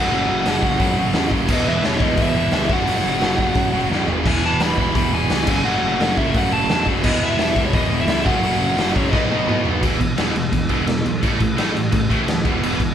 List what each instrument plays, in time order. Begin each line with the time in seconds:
Already playing: overdriven electric guitar F#2 F#3 C#4 F#4 A4, distorted electric guitar C#3 F#3, lead electric guitar F#5
0.11 picked electric bass F#1, distorted electric guitar F#2 C#3 F#3
0.27 picked electric bass F#1, distorted electric guitar F#2 C#3 F#3
0.44 picked electric bass F#1, distorted electric guitar F#2 C#3 F#3, snare, open hi-hat
0.61 picked electric bass F#1, distorted electric guitar F#2 C#3 F#3, kick
0.79 distorted electric guitar F#2 C#3 F#3, picked electric bass F#2, kick, open hi-hat
0.96 picked electric bass F#1, distorted electric guitar F#2 C#3 F#3
1.13 picked electric bass E2, distorted electric guitar F#2 C#3 F#3, snare, open hi-hat
1.31 picked electric bass F#1, distorted electric guitar F#2 C#3 F#3, kick
1.47 picked electric bass E1, distorted electric guitar E2 B2 E3, overdriven electric guitar E3 G#3 B3 E4 G#4, kick, crash
1.53 lead electric guitar D#5
1.65 picked electric bass E1, distorted electric guitar E2 B2 E3, lead electric guitar E5
1.83 picked electric bass E1, distorted electric guitar E2 B2 E3, lead electric guitar C#5, snare, open hi-hat
2.00 picked electric bass E1, distorted electric guitar E2 B2 E3, lead electric guitar D#5, kick
2.16 distorted electric guitar E2 B2 E3, picked electric bass E2, kick, open hi-hat
2.22 lead electric guitar E5
2.34 picked electric bass E1, distorted electric guitar E2 B2 E3
2.51 picked electric bass C#2, distorted electric guitar E2 B2 E3, snare, open hi-hat
2.68 picked electric bass F#1, distorted electric guitar F#2 C#3 F#3, overdriven electric guitar F#3 C#4 F#4 A4, kick
2.73 lead electric guitar F#5
2.85 picked electric bass F#1, distorted electric guitar F#2 C#3 F#3, open hi-hat
3.03 picked electric bass F#1, distorted electric guitar F#2 C#3 F#3
3.21 picked electric bass F#1, distorted electric guitar F#2 C#3 F#3, snare, open hi-hat
3.38 picked electric bass F#1, distorted electric guitar F#2 C#3 F#3, kick
3.54 picked electric bass F#2, distorted electric guitar F#2 C#3 F#3, kick, open hi-hat
3.73 picked electric bass F#1, distorted electric guitar F#2 C#3 F#3
3.90 picked electric bass E2, distorted electric guitar F#2 C#3 F#3, snare
4.07 picked electric bass F#1, distorted electric guitar F#2 C#3 F#3, floor tom
4.24 picked electric bass E1, distorted electric guitar E2 B2 E3, overdriven electric guitar E3 B3 E4 G#4, lead electric guitar G#5, kick, crash
4.42 picked electric bass E1, distorted electric guitar E2 B2 E3
4.46 lead electric guitar A5
4.60 picked electric bass E1, distorted electric guitar E2 B2 E3, lead electric guitar B5, snare, open hi-hat
4.77 picked electric bass E1, distorted electric guitar E2 B2 E3, kick
4.94 distorted electric guitar E2 B2 E3, picked electric bass E2, lead electric guitar B5, kick, open hi-hat
5.13 picked electric bass E1, distorted electric guitar E2 B2 E3, lead electric guitar G#5
5.30 picked electric bass C#2, distorted electric guitar E2 B2 E3, snare, open hi-hat
5.46 picked electric bass F#1, distorted electric guitar F#2 C#3 F#3, overdriven electric guitar F#3 A3 C#4 F#4, kick, crash
5.65 picked electric bass F#1, distorted electric guitar F#2 C#3 F#3, lead electric guitar F#5
5.81 picked electric bass F#1, distorted electric guitar F#2 C#3 F#3, lead electric guitar F#5
6.00 picked electric bass F#1, distorted electric guitar F#2 C#3 F#3, snare, open hi-hat
6.17 picked electric bass F#1, distorted electric guitar F#2 C#3 F#3, lead electric guitar E5, kick
6.34 distorted electric guitar F#2 C#3 F#3, picked electric bass F#2, lead electric guitar F#5, kick, open hi-hat
6.52 picked electric bass F#1, distorted electric guitar F#2 C#3 F#3, lead electric guitar A5
6.69 picked electric bass E2, distorted electric guitar F#2 C#3 F#3, snare, open hi-hat
6.87 picked electric bass F#1, distorted electric guitar F#2 C#3 F#3, kick
7.02 picked electric bass E1, distorted electric guitar E2 B2, overdriven electric guitar E3 G#3 B3 E4, lead electric guitar D#5, kick, crash
7.06 distorted electric guitar E3
7.20 picked electric bass E1, distorted electric guitar E2 B2 E3
7.24 lead electric guitar E5
7.38 picked electric bass E1, distorted electric guitar E2 B2 E3, snare, open hi-hat
7.56 picked electric bass E1, distorted electric guitar E2 B2 E3, kick
7.66 lead electric guitar C#5
7.73 picked electric bass E2, distorted electric guitar E2 B2 E3, lead electric guitar D#5, kick, open hi-hat
7.91 picked electric bass E1, distorted electric guitar E2 B2 E3
8.01 lead electric guitar E5
8.07 picked electric bass C#2, distorted electric guitar E2 B2 E3, snare, open hi-hat
8.24 picked electric bass F#1, overdriven electric guitar F#2 C#3 F#3 A3 C#4, distorted electric guitar F#2 C#3 F#3, lead electric guitar F#5, kick
8.41 picked electric bass F#1, distorted electric guitar F#2 C#3 F#3, open hi-hat
8.60 picked electric bass F#1, distorted electric guitar F#2 C#3 F#3
8.77 picked electric bass F#1, distorted electric guitar F#2 C#3 F#3, snare, open hi-hat
8.95 picked electric bass F#1, distorted electric guitar F#2 C#3 F#3, lead electric guitar C#5, kick
9.11 picked electric bass B1, overdriven electric guitar B2 F#3 B3 D#4, distorted electric guitar B2 F#3 B3, lead electric guitar D#5, kick, snare
9.30 picked electric bass B1, distorted electric guitar B2 F#3 B3, high tom
9.47 picked electric bass A2, distorted electric guitar B2 F#3 B3, mid tom
9.65 picked electric bass B1, distorted electric guitar B2 F#3 B3, floor tom
9.81 picked electric bass E1, distorted electric guitar E2 B2 E3, kick, crash
10.00 picked electric bass E1, distorted electric guitar E2 B2, kick, crash
10.16 picked electric bass E1, distorted electric guitar E2 B2 E3, snare, crash
10.34 picked electric bass E1, distorted electric guitar E2 B2, crash
10.52 picked electric bass E1, distorted electric guitar E2 B2, kick, crash
10.69 picked electric bass E1, distorted electric guitar E2 B2 E3, kick, crash
10.86 picked electric bass E1, distorted electric guitar E2 B2, snare, crash
11.03 picked electric bass B1, distorted electric guitar E2 B2, crash
11.21 picked electric bass A1, distorted electric guitar A2 E3 A3, kick, crash
11.39 picked electric bass A1, distorted electric guitar A2 E3, kick, crash
11.56 picked electric bass A1, distorted electric guitar A2 E3 A3, snare, crash
11.74 picked electric bass A1, distorted electric guitar A2 E3, crash
11.92 picked electric bass A1, distorted electric guitar A2 E3, kick, crash
12.09 distorted electric guitar A2 E3 A3, kick, crash
12.26 picked electric bass D2, distorted electric guitar A2 E3, snare, crash
12.44 picked electric bass E1, distorted electric guitar E2 B2 E3, kick, crash
12.62 picked electric bass E1, distorted electric guitar E2 B2 E3, crash
12.79 picked electric bass E1, distorted electric guitar E2 B2, kick, crash